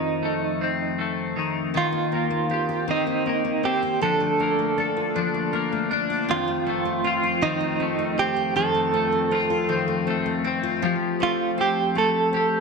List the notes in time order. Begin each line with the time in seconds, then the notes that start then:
Already playing: F2 D#3 A3 C4 D#4
0.23 A3
0.61 C4
0.99 A3
1.36 D#3
1.74 D#3 F4
1.92 A#3
2.12 A#3 C4
2.30 A#3
2.50 C4 G4
2.69 G4
2.88 D#3 C4 D#4
3.07 A#3
3.26 A#3 C4
3.45 A#3
3.63 C4 G4
3.82 G4
4.01 D3 F3 A4
4.20 A3
4.40 A#3 D4
4.59 A3
4.78 D4 A4
4.97 F4
5.16 F3 D4
5.34 A3
5.53 A#3 D4
5.72 A3
5.91 D4
6.10 F4
6.29 F2 D#3 F4
6.48 A3
6.66 A3 C4
6.85 A3
7.04 C4 F4
7.23 F4
7.42 D#3 C4 D#4
7.61 A3
7.80 A3 C4
7.99 A3
8.18 C4 G4
8.37 F4
8.56 F2 D#3 A4
8.74 A3
8.94 A3 C4
9.12 A3
9.31 C4 F4
9.50 F4
9.69 D#3 C4
9.88 A3
10.07 A3 C4
10.26 A3
10.44 C4
10.63 F4
10.82 F3 G4
11.20 A3 C4 F4
11.58 C4 G4
11.95 A3 A4
12.33 C4 G4